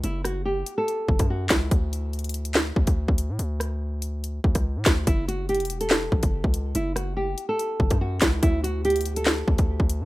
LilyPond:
<<
  \new Staff \with { instrumentName = "Nylon-string guitar" } { \time 4/4 \key fis \phrygian \tempo 4 = 143 e'8 fis'8 g'8. a'4~ a'16 fis'8 e'8 | r1 | r1 | e'8 fis'8 g'8. a'2~ a'16 |
e'8 fis'8 g'8. a'4~ a'16 fis'8 e'8 | e'8 fis'8 g'8. a'2~ a'16 | }
  \new Staff \with { instrumentName = "808-style bass" } { \clef bass \time 4/4 \key fis \phrygian fis,,4. r4 fis,,16 fis,8. cis,8 | d,2~ d,8 d,16 d,8 d,8 a,16 | d,2~ d,8 d,16 cis,8 a,16 d,8 | fis,,4~ fis,,16 e,,4~ e,,16 a,,16 fis,,8 cis,8. |
fis,,4. r4 fis,,16 fis,8. cis,8 | d,2~ d,8 d,16 d,8 d,8 a,16 | }
  \new DrumStaff \with { instrumentName = "Drums" } \drummode { \time 4/4 hh8 <hh ss>8 r8 hh8 hh8 bd16 <hh bd ss>16 r8 <hc hh bd sn>8 | <hh bd>8 hh8 hh32 hh32 hh32 hh32 hh16 hh16 <hc sn>8 bd16 <hh bd>16 r16 bd16 hh8 | hh8 <hh ss>8 r8 hh8 hh8 bd16 <hh bd ss>16 r8 <hc hh bd sn>8 | <hh bd>8 hh8 hh32 hh32 hh32 hh32 hh16 hh16 <hc sn>8 bd16 <hh bd>16 r16 bd16 hh8 |
hh8 <hh ss>8 r8 hh8 hh8 bd16 <hh bd ss>16 r8 <hc hh bd sn>8 | <hh bd>8 hh8 hh32 hh32 hh32 hh32 hh16 hh16 <hc sn>8 bd16 <hh bd>16 r16 bd16 hh8 | }
>>